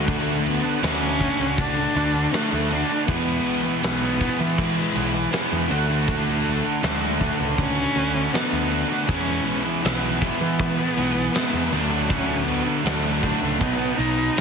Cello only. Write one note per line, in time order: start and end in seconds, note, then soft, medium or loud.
0.00 0.12 G#3 loud
0.10 0.49 A3 medium
0.48 0.84 B3 loud
0.85 1.61 C#4 loud
1.60 2.37 D4 loud
2.36 2.75 A3 loud
2.73 3.09 D4 loud
3.09 3.80 B3 loud
3.84 4.63 B3 loud
4.61 5.35 G#3 medium
5.72 6.43 A3 loud
6.48 6.64 A3 loud
6.85 7.23 G#3 medium
7.22 7.58 A3 loud
7.59 8.35 C#4 loud
8.33 8.90 B3 loud
9.09 9.80 C#4 loud
10.22 11.74 B3 loud
11.73 12.11 A3 medium
12.09 12.46 C#4 loud
12.46 12.82 B3 medium
12.84 13.20 A3 medium
13.21 13.62 A3 medium
13.60 13.98 B3 loud
13.96 14.41 D#4 loud